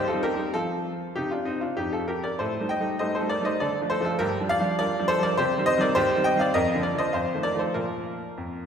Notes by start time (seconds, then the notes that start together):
Already playing: D#2
0.08 F4 A4
0.13 G3 C4 D#4
0.23 G4 A#4
0.34 G3 C4 D#4
0.54 F3 C4 F4 A4
1.16 C3 D#4 G4
1.31 D4 F4
1.45 C4 D#4
1.61 D4 F4
1.77 F2 D#4 G4
1.93 F4 A4
2.08 G4 A#4
2.24 A#4 D5
2.39 A2 A4 C5
2.60 G3 A3 D#4
2.69 D#5 G5
2.80 G3 A3 D#4
2.99 G3 A3 D#4 C5 D#5
3.15 A4 C5
3.20 G3 A3 D#4
3.30 A#4 D5
3.41 G3 A3 D#4 D#5
3.46 C5
3.60 D3 A4 D5
3.81 F3 A3 D4
3.90 A4 C5
4.01 F3 A3 D4
4.05 F4 A4
4.19 G2 G4 A#4
4.40 F3 G3 D4
4.49 D5 F5
4.59 F3 G3 D4
4.79 F3 G3 D4 A#4 D5
4.99 F3 G3 D4
5.08 A4 C5
5.19 F3 G3 D4
5.23 A#4 D5
5.37 C3 G4 C5
5.58 D#3 G3 C4
5.66 C5 D#5
5.77 D#3 G3 C4 D5
5.82 A#4
5.95 D#2 G4 C5
6.16 D#3 G3 C4
6.24 D#5 G5
6.36 D#3 G3 C4 F5
6.41 D5
6.54 F2 A#4 D#5
6.74 D3 F3 A#3
6.83 A#4 D5
6.94 D3 F3 A#3
6.99 C5 D#5
7.13 F2 C5 F5
7.34 D#3 F3 A3
7.43 A#4 D5
7.54 D#3 F3 A3
7.59 A4 C5
7.74 A#2 F3 A#3 F4 A#4
8.37 F2